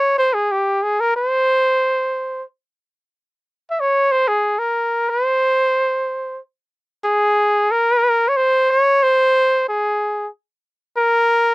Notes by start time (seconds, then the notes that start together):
Already playing: C#5
0.18 C5
0.34 G#4
0.52 G4
0.83 G#4
1.00 A#4
1.16 C5
3.70 E5
3.80 C#5
4.12 C5
4.28 G#4
4.59 A#4
5.10 C5
7.04 G#4
7.71 A#4
8.28 C#5
8.37 C5
8.70 C#5
9.03 C5
9.69 G#4
10.97 A#4